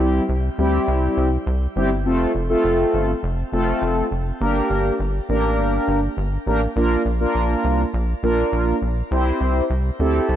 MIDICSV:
0, 0, Header, 1, 3, 480
1, 0, Start_track
1, 0, Tempo, 588235
1, 1677, Time_signature, 4, 2, 24, 8
1, 8455, End_track
2, 0, Start_track
2, 0, Title_t, "Analog polysynth"
2, 0, Program_c, 0, 90
2, 0, Note_on_c, 0, 55, 85
2, 0, Note_on_c, 0, 60, 82
2, 0, Note_on_c, 0, 64, 81
2, 0, Note_on_c, 0, 67, 95
2, 189, Note_off_c, 0, 55, 0
2, 189, Note_off_c, 0, 60, 0
2, 189, Note_off_c, 0, 64, 0
2, 189, Note_off_c, 0, 67, 0
2, 477, Note_on_c, 0, 55, 84
2, 477, Note_on_c, 0, 60, 77
2, 477, Note_on_c, 0, 64, 80
2, 477, Note_on_c, 0, 67, 93
2, 1053, Note_off_c, 0, 55, 0
2, 1053, Note_off_c, 0, 60, 0
2, 1053, Note_off_c, 0, 64, 0
2, 1053, Note_off_c, 0, 67, 0
2, 1437, Note_on_c, 0, 55, 87
2, 1437, Note_on_c, 0, 60, 81
2, 1437, Note_on_c, 0, 64, 83
2, 1437, Note_on_c, 0, 67, 96
2, 1551, Note_off_c, 0, 55, 0
2, 1551, Note_off_c, 0, 60, 0
2, 1551, Note_off_c, 0, 64, 0
2, 1551, Note_off_c, 0, 67, 0
2, 1677, Note_on_c, 0, 57, 87
2, 1677, Note_on_c, 0, 60, 78
2, 1677, Note_on_c, 0, 65, 77
2, 1677, Note_on_c, 0, 69, 94
2, 1893, Note_off_c, 0, 57, 0
2, 1893, Note_off_c, 0, 60, 0
2, 1893, Note_off_c, 0, 65, 0
2, 1893, Note_off_c, 0, 69, 0
2, 2036, Note_on_c, 0, 65, 83
2, 2036, Note_on_c, 0, 69, 94
2, 2037, Note_on_c, 0, 57, 86
2, 2037, Note_on_c, 0, 60, 80
2, 2541, Note_off_c, 0, 57, 0
2, 2541, Note_off_c, 0, 60, 0
2, 2541, Note_off_c, 0, 65, 0
2, 2541, Note_off_c, 0, 69, 0
2, 2877, Note_on_c, 0, 57, 89
2, 2877, Note_on_c, 0, 60, 82
2, 2877, Note_on_c, 0, 65, 84
2, 2877, Note_on_c, 0, 69, 98
2, 3309, Note_off_c, 0, 57, 0
2, 3309, Note_off_c, 0, 60, 0
2, 3309, Note_off_c, 0, 65, 0
2, 3309, Note_off_c, 0, 69, 0
2, 3597, Note_on_c, 0, 58, 89
2, 3597, Note_on_c, 0, 62, 78
2, 3597, Note_on_c, 0, 67, 81
2, 3597, Note_on_c, 0, 70, 94
2, 4029, Note_off_c, 0, 58, 0
2, 4029, Note_off_c, 0, 62, 0
2, 4029, Note_off_c, 0, 67, 0
2, 4029, Note_off_c, 0, 70, 0
2, 4317, Note_on_c, 0, 58, 82
2, 4317, Note_on_c, 0, 62, 76
2, 4317, Note_on_c, 0, 67, 80
2, 4317, Note_on_c, 0, 70, 94
2, 4893, Note_off_c, 0, 58, 0
2, 4893, Note_off_c, 0, 62, 0
2, 4893, Note_off_c, 0, 67, 0
2, 4893, Note_off_c, 0, 70, 0
2, 5277, Note_on_c, 0, 58, 92
2, 5277, Note_on_c, 0, 62, 82
2, 5277, Note_on_c, 0, 67, 81
2, 5277, Note_on_c, 0, 70, 99
2, 5392, Note_off_c, 0, 58, 0
2, 5392, Note_off_c, 0, 62, 0
2, 5392, Note_off_c, 0, 67, 0
2, 5392, Note_off_c, 0, 70, 0
2, 5517, Note_on_c, 0, 58, 87
2, 5517, Note_on_c, 0, 62, 81
2, 5517, Note_on_c, 0, 65, 80
2, 5518, Note_on_c, 0, 70, 97
2, 5733, Note_off_c, 0, 58, 0
2, 5733, Note_off_c, 0, 62, 0
2, 5733, Note_off_c, 0, 65, 0
2, 5733, Note_off_c, 0, 70, 0
2, 5878, Note_on_c, 0, 58, 89
2, 5878, Note_on_c, 0, 62, 79
2, 5878, Note_on_c, 0, 65, 82
2, 5878, Note_on_c, 0, 70, 97
2, 6381, Note_off_c, 0, 58, 0
2, 6381, Note_off_c, 0, 62, 0
2, 6381, Note_off_c, 0, 65, 0
2, 6381, Note_off_c, 0, 70, 0
2, 6717, Note_on_c, 0, 58, 89
2, 6717, Note_on_c, 0, 65, 81
2, 6718, Note_on_c, 0, 62, 84
2, 6718, Note_on_c, 0, 70, 97
2, 7149, Note_off_c, 0, 58, 0
2, 7149, Note_off_c, 0, 62, 0
2, 7149, Note_off_c, 0, 65, 0
2, 7149, Note_off_c, 0, 70, 0
2, 7437, Note_on_c, 0, 67, 78
2, 7437, Note_on_c, 0, 72, 96
2, 7438, Note_on_c, 0, 60, 87
2, 7438, Note_on_c, 0, 64, 80
2, 7869, Note_off_c, 0, 60, 0
2, 7869, Note_off_c, 0, 64, 0
2, 7869, Note_off_c, 0, 67, 0
2, 7869, Note_off_c, 0, 72, 0
2, 8157, Note_on_c, 0, 60, 84
2, 8157, Note_on_c, 0, 64, 79
2, 8157, Note_on_c, 0, 67, 77
2, 8157, Note_on_c, 0, 69, 95
2, 8455, Note_off_c, 0, 60, 0
2, 8455, Note_off_c, 0, 64, 0
2, 8455, Note_off_c, 0, 67, 0
2, 8455, Note_off_c, 0, 69, 0
2, 8455, End_track
3, 0, Start_track
3, 0, Title_t, "Analog synth bass"
3, 0, Program_c, 1, 38
3, 0, Note_on_c, 1, 36, 97
3, 164, Note_off_c, 1, 36, 0
3, 236, Note_on_c, 1, 36, 93
3, 404, Note_off_c, 1, 36, 0
3, 477, Note_on_c, 1, 38, 86
3, 645, Note_off_c, 1, 38, 0
3, 716, Note_on_c, 1, 36, 111
3, 884, Note_off_c, 1, 36, 0
3, 956, Note_on_c, 1, 36, 101
3, 1125, Note_off_c, 1, 36, 0
3, 1196, Note_on_c, 1, 36, 104
3, 1364, Note_off_c, 1, 36, 0
3, 1437, Note_on_c, 1, 31, 95
3, 1677, Note_on_c, 1, 29, 106
3, 1689, Note_off_c, 1, 31, 0
3, 1845, Note_off_c, 1, 29, 0
3, 1917, Note_on_c, 1, 29, 91
3, 2085, Note_off_c, 1, 29, 0
3, 2157, Note_on_c, 1, 29, 99
3, 2325, Note_off_c, 1, 29, 0
3, 2397, Note_on_c, 1, 31, 94
3, 2565, Note_off_c, 1, 31, 0
3, 2637, Note_on_c, 1, 29, 114
3, 2805, Note_off_c, 1, 29, 0
3, 2877, Note_on_c, 1, 29, 100
3, 3045, Note_off_c, 1, 29, 0
3, 3116, Note_on_c, 1, 29, 111
3, 3285, Note_off_c, 1, 29, 0
3, 3357, Note_on_c, 1, 29, 96
3, 3525, Note_off_c, 1, 29, 0
3, 3596, Note_on_c, 1, 31, 111
3, 3764, Note_off_c, 1, 31, 0
3, 3836, Note_on_c, 1, 31, 102
3, 4004, Note_off_c, 1, 31, 0
3, 4076, Note_on_c, 1, 31, 96
3, 4244, Note_off_c, 1, 31, 0
3, 4317, Note_on_c, 1, 33, 92
3, 4556, Note_on_c, 1, 31, 103
3, 4569, Note_off_c, 1, 33, 0
3, 4725, Note_off_c, 1, 31, 0
3, 4796, Note_on_c, 1, 31, 106
3, 4964, Note_off_c, 1, 31, 0
3, 5036, Note_on_c, 1, 31, 103
3, 5204, Note_off_c, 1, 31, 0
3, 5276, Note_on_c, 1, 33, 88
3, 5444, Note_off_c, 1, 33, 0
3, 5516, Note_on_c, 1, 34, 109
3, 5684, Note_off_c, 1, 34, 0
3, 5755, Note_on_c, 1, 34, 95
3, 5924, Note_off_c, 1, 34, 0
3, 5996, Note_on_c, 1, 34, 105
3, 6164, Note_off_c, 1, 34, 0
3, 6236, Note_on_c, 1, 36, 91
3, 6404, Note_off_c, 1, 36, 0
3, 6476, Note_on_c, 1, 34, 107
3, 6644, Note_off_c, 1, 34, 0
3, 6716, Note_on_c, 1, 34, 102
3, 6884, Note_off_c, 1, 34, 0
3, 6956, Note_on_c, 1, 34, 113
3, 7124, Note_off_c, 1, 34, 0
3, 7196, Note_on_c, 1, 34, 86
3, 7364, Note_off_c, 1, 34, 0
3, 7436, Note_on_c, 1, 36, 109
3, 7604, Note_off_c, 1, 36, 0
3, 7676, Note_on_c, 1, 36, 94
3, 7844, Note_off_c, 1, 36, 0
3, 7916, Note_on_c, 1, 36, 99
3, 8084, Note_off_c, 1, 36, 0
3, 8156, Note_on_c, 1, 38, 84
3, 8324, Note_off_c, 1, 38, 0
3, 8396, Note_on_c, 1, 36, 104
3, 8455, Note_off_c, 1, 36, 0
3, 8455, End_track
0, 0, End_of_file